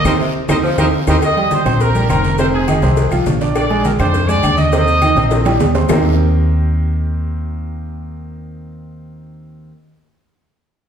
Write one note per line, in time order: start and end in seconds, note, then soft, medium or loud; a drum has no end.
0.05 0.16 D#2 loud
0.05 0.14 C4 loud
0.05 0.14 D#4 loud
0.05 0.14 G4 medium
0.05 0.13 A#4 loud
0.05 0.13 C5 loud
0.05 0.13 D#5 loud
0.05 cowbell loud
0.05 high conga loud
0.05 high timbale medium
0.05 long guiro loud
0.05 claves loud
0.05 maracas loud
0.20 0.43 C3 medium
0.49 0.60 D#2 loud
0.49 0.58 C4 medium
0.49 0.58 D#4 loud
0.49 0.58 G4 loud
0.49 0.57 A#4 loud
0.49 0.57 C5 loud
0.49 0.57 D#5 loud
0.49 cowbell loud
0.49 high conga loud
0.49 high timbale loud
0.49 long guiro loud
0.49 claves loud
0.49 maracas loud
0.64 0.87 F3 loud
0.78 0.89 D#2 medium
0.78 0.87 C4 loud
0.78 0.88 D#4 loud
0.78 0.87 G4 loud
0.78 0.86 A#4 loud
0.78 0.86 C5 loud
0.78 0.86 D#5 loud
0.78 cowbell loud
0.78 high conga loud
0.78 high timbale medium
0.78 claves medium
0.78 maracas loud
1.07 1.18 D#2 loud
1.07 1.15 D#3 medium
1.07 1.17 C4 medium
1.07 1.17 D#4 medium
1.07 1.17 G4 loud
1.07 1.15 A#4 loud
1.07 1.16 C5 loud
1.07 1.16 D#5 loud
1.07 cowbell medium
1.07 high conga loud
1.07 high timbale medium
1.07 long guiro loud
1.07 claves medium
1.07 maracas loud
1.22 1.50 D#5 loud
1.22 cowbell loud
1.22 high conga soft
1.22 low agogo loud
1.22 long guiro medium
1.22 claves medium
1.22 maracas medium
1.37 1.61 G3 medium
1.37 1.61 G4 medium
1.37 1.61 G5 medium
1.37 low agogo medium
1.51 1.80 C5 medium
1.51 cowbell medium
1.51 high conga loud
1.51 low agogo medium
1.51 short guiro medium
1.51 maracas medium
1.66 2.06 A#1 loud
1.66 1.90 C4 medium
1.66 1.90 C5 medium
1.66 1.90 C6 medium
1.66 cowbell medium
1.66 high conga soft
1.66 low conga medium
1.66 low agogo loud
1.66 short guiro medium
1.66 claves medium
1.66 maracas soft
1.80 2.09 A#4 loud
1.80 cowbell medium
1.80 high conga soft
1.80 low conga medium
1.80 long guiro medium
1.80 maracas medium
1.95 2.07 G3 medium
1.95 2.07 G4 medium
1.95 2.07 G5 medium
1.95 high conga soft
1.95 low agogo medium
1.95 maracas medium
2.09 2.77 F1 medium
2.09 2.33 C4 medium
2.09 2.37 A#4 loud
2.09 2.34 C5 medium
2.09 2.34 C6 medium
2.09 cowbell medium
2.09 high conga medium
2.09 low agogo loud
2.09 short guiro medium
2.09 claves medium
2.09 maracas medium
2.24 cowbell medium
2.24 high conga medium
2.24 short guiro medium
2.24 maracas soft
2.38 2.63 C3 medium
2.38 2.63 C4 medium
2.38 2.46 C5 loud
2.38 2.63 C5 medium
2.38 cowbell loud
2.38 high conga soft
2.38 low agogo medium
2.38 long guiro medium
2.38 maracas medium
2.54 3.08 G#4 medium
2.54 high conga soft
2.68 2.80 D#3 medium
2.68 2.80 D#4 medium
2.68 2.80 D#5 medium
2.68 cowbell medium
2.68 high conga loud
2.68 low agogo loud
2.68 short guiro medium
2.68 claves medium
2.68 maracas medium
2.82 3.09 C2 loud
2.82 3.07 C3 medium
2.82 3.07 C4 medium
2.82 3.07 C5 medium
2.82 high conga soft
2.82 low agogo medium
2.82 short guiro medium
2.82 maracas soft
2.97 cowbell loud
2.97 high conga soft
2.97 low agogo medium
2.97 long guiro medium
2.97 maracas medium
3.11 3.25 C2 medium
3.11 3.36 F3 medium
3.11 3.36 F4 medium
3.11 3.36 F5 medium
3.11 high conga soft
3.11 low agogo loud
3.11 claves medium
3.11 maracas medium
3.26 3.94 A#1 medium
3.26 cowbell medium
3.26 high conga medium
3.26 low timbale medium
3.26 short guiro medium
3.26 maracas medium
3.41 3.65 D4 medium
3.41 3.65 D5 medium
3.41 3.65 D6 medium
3.41 cowbell medium
3.41 high conga soft
3.41 short guiro medium
3.41 maracas soft
3.55 3.83 D5 loud
3.55 cowbell loud
3.55 high conga soft
3.55 low agogo loud
3.55 claves medium
3.55 maracas medium
3.70 3.94 G#3 medium
3.70 3.94 G#4 medium
3.70 3.94 G#5 medium
3.70 high conga soft
3.70 low agogo medium
3.84 3.92 A#4 medium
3.84 cowbell medium
3.84 high conga loud
3.84 low agogo medium
3.84 short guiro medium
3.84 maracas medium
3.99 4.40 F2 loud
3.99 4.24 D4 medium
3.99 4.27 C5 loud
3.99 4.24 D5 medium
3.99 4.24 D6 medium
3.99 cowbell medium
3.99 high conga soft
3.99 low conga medium
3.99 low agogo loud
3.99 short guiro medium
3.99 claves medium
3.99 maracas soft
4.14 cowbell medium
4.14 high conga soft
4.14 low conga medium
4.14 long guiro medium
4.14 maracas medium
4.28 4.40 G#3 medium
4.28 4.41 G#4 medium
4.28 4.58 D5 loud
4.28 4.41 G#5 medium
4.28 high conga soft
4.28 low agogo medium
4.28 maracas medium
4.43 5.11 D#2 medium
4.43 4.67 D4 medium
4.43 4.68 D5 medium
4.43 4.68 D6 medium
4.43 cowbell medium
4.43 high conga medium
4.43 low agogo loud
4.43 short guiro medium
4.43 claves medium
4.43 maracas medium
4.57 5.56 D#5 loud
4.57 cowbell medium
4.57 high conga medium
4.57 short guiro medium
4.57 maracas soft
4.72 4.96 C3 medium
4.72 4.97 C4 medium
4.72 4.97 C5 medium
4.72 cowbell loud
4.72 high conga soft
4.72 low agogo medium
4.72 long guiro medium
4.72 maracas medium
4.87 high conga soft
4.87 maracas medium
5.02 5.14 D#3 medium
5.02 5.14 D#4 medium
5.02 5.14 D#5 medium
5.02 cowbell medium
5.02 high conga loud
5.02 low agogo loud
5.02 short guiro medium
5.02 claves medium
5.02 maracas medium
5.16 5.57 A#1 loud
5.16 5.40 C3 medium
5.16 5.40 C4 loud
5.16 5.41 C5 medium
5.16 high conga soft
5.16 low agogo medium
5.16 short guiro medium
5.16 maracas soft
5.30 cowbell loud
5.30 high conga soft
5.30 high timbale loud
5.30 low agogo medium
5.30 long guiro medium
5.30 maracas medium
5.45 5.69 G3 medium
5.45 5.70 G4 medium
5.45 5.70 G5 medium
5.45 high conga soft
5.45 high timbale loud
5.45 low agogo loud
5.45 claves medium
5.45 maracas medium
5.59 5.86 D#2 medium
5.59 cowbell medium
5.59 high conga medium
5.59 low timbale medium
5.59 short guiro medium
5.59 maracas medium
5.75 5.87 C4 medium
5.75 5.87 C5 medium
5.75 5.87 C6 medium
5.75 cowbell medium
5.75 high conga soft
5.75 low timbale medium
5.75 short guiro medium
5.75 maracas soft
5.89 9.69 D#2 loud
5.89 9.69 D#3 medium
5.89 9.69 A#3 medium
5.89 9.69 C4 medium
5.89 9.69 D#4 medium
5.89 9.69 G4 medium
5.89 9.69 A#4 loud
5.89 low bongo loud
5.89 low conga medium
5.89 low timbale medium
5.89 long guiro loud
5.89 claves loud
5.89 maracas loud